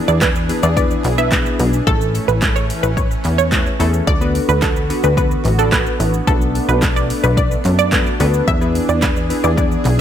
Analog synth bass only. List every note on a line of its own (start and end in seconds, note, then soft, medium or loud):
0.08 0.51 E2 medium
0.63 0.96 E2 loud
1.05 1.48 B1 loud
1.60 1.81 B1 medium
1.87 2.19 A1 loud
2.29 2.72 A1 medium
2.84 3.16 A1 loud
3.25 3.68 E2 medium
3.80 4.01 E2 loud
4.07 4.40 D2 loud
4.49 4.92 D2 medium
5.04 5.36 D2 loud
5.45 5.88 A1 medium
6.00 6.22 A1 medium
6.27 6.60 B1 loud
6.69 7.12 B1 medium
7.24 7.56 B1 loud
7.65 8.08 F#2 medium
8.20 8.42 D2 medium
8.48 8.80 E2 loud
8.89 9.32 E2 medium
9.44 9.76 E2 loud
9.85 10.01 B1 loud